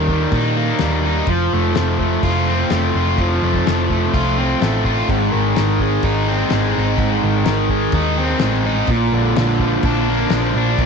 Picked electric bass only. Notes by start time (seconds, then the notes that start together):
Already playing: D#2
0.32 A#2
0.81 D#2
1.27 F1
1.53 F1
1.77 F1
2.23 F1
2.71 F1
2.95 F1
3.18 F1
3.43 F1
3.68 F1
4.14 C2
4.62 A1
5.09 G#1
5.34 G#1
5.58 G#1
6.03 G#1
6.52 G#1
6.78 G#1
6.98 G#1
7.23 G#1
7.46 G#1
7.93 D#2
8.42 A1
8.88 A#1
9.12 A#1
9.37 A#1
9.84 A#1
10.32 A#1
10.55 A#1
10.79 A#1